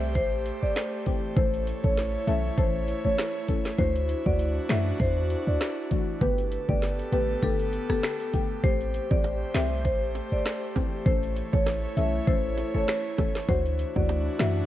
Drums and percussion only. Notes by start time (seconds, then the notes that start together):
0.15 kick, closed hi-hat
0.46 closed hi-hat
0.76 finger snap, snare, closed hi-hat
1.06 kick, closed hi-hat
1.36 kick, closed hi-hat
1.53 closed hi-hat
1.67 closed hi-hat
1.84 kick
1.97 snare, closed hi-hat
2.28 closed hi-hat
2.58 kick, closed hi-hat
2.88 closed hi-hat
3.18 finger snap, snare, closed hi-hat
3.49 kick, closed hi-hat
3.66 snare
3.79 kick, closed hi-hat
3.96 closed hi-hat
4.09 closed hi-hat
4.26 kick
4.39 closed hi-hat
4.69 finger snap, snare, closed hi-hat
5.00 kick, closed hi-hat
5.30 closed hi-hat
5.61 finger snap, snare, closed hi-hat
5.91 kick, closed hi-hat
6.21 kick, closed hi-hat
6.38 closed hi-hat
6.52 closed hi-hat
6.69 kick
6.82 snare, closed hi-hat
6.99 closed hi-hat
7.12 closed hi-hat
7.43 kick, closed hi-hat
7.60 closed hi-hat
7.73 closed hi-hat
7.90 cross-stick
8.03 finger snap, snare, closed hi-hat
8.20 closed hi-hat
8.33 kick, closed hi-hat
8.64 kick, closed hi-hat
8.81 closed hi-hat
8.94 closed hi-hat
9.11 kick, high bongo
9.24 closed hi-hat, high bongo
9.54 finger snap, snare, closed hi-hat
9.85 kick, closed hi-hat
10.15 closed hi-hat, high bongo
10.45 finger snap, snare, closed hi-hat
10.76 kick, closed hi-hat, high bongo, low bongo
11.06 kick, closed hi-hat
11.23 closed hi-hat
11.37 closed hi-hat
11.53 kick, high bongo
11.66 snare, closed hi-hat, high bongo
11.97 closed hi-hat
12.27 kick, closed hi-hat
12.57 closed hi-hat, high bongo
12.88 finger snap, snare, closed hi-hat
13.18 kick, closed hi-hat, high bongo, low bongo
13.35 snare
13.48 kick, closed hi-hat
13.65 closed hi-hat
13.79 closed hi-hat
13.96 kick, high bongo
14.09 closed hi-hat, high bongo
14.39 finger snap, snare, closed hi-hat